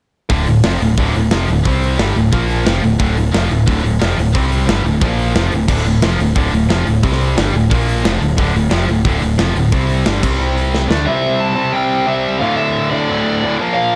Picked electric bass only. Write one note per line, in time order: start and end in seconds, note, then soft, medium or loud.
0.30 0.45 D1 medium
0.48 0.63 D1 medium
0.64 0.80 F1 medium
0.80 0.96 D1 medium
0.98 1.13 D1 loud
1.15 1.30 D1 medium
1.32 1.48 F1 medium
1.48 1.64 D1 medium
1.65 1.97 C2 loud
1.99 2.14 G1 medium
2.16 2.32 D1 medium
2.32 2.64 A#1 medium
2.67 2.82 F1 medium
2.83 2.99 D1 medium
3.00 3.15 D1 loud
3.18 3.33 D1 medium
3.35 3.50 F1 medium
3.51 3.66 D1 medium
3.68 3.83 D1 medium
3.84 4.00 D1 medium
4.01 4.17 F1 medium
4.18 4.33 D1 medium
4.35 4.66 C2 loud
4.68 4.84 G1 medium
4.84 5.00 D1 medium
5.02 5.33 A#1 medium
5.35 5.51 F1 medium
5.52 5.68 D1 medium
5.69 5.84 D1 medium
5.85 6.01 D1 medium
6.01 6.18 F1 medium
6.19 6.35 D1 medium
6.36 6.52 D1 medium
6.53 6.69 D1 medium
6.70 6.86 F1 medium
6.87 7.02 D1 medium
7.04 7.35 C2 loud
7.38 7.53 G1 medium
7.54 7.70 D1 medium
7.72 8.03 A#1 medium
8.05 8.20 F1 medium
8.21 8.37 D1 medium
8.38 8.54 D1 loud
8.55 8.71 D1 medium
8.72 8.87 F1 medium
8.89 9.04 D1 medium
9.05 9.21 D1 loud
9.22 9.38 D1 medium
9.38 9.54 F1 medium
9.55 9.71 D1 medium
9.72 10.04 C2 loud
10.07 10.22 G1 medium
10.23 10.86 C2 loud
10.90 11.06 D2 loud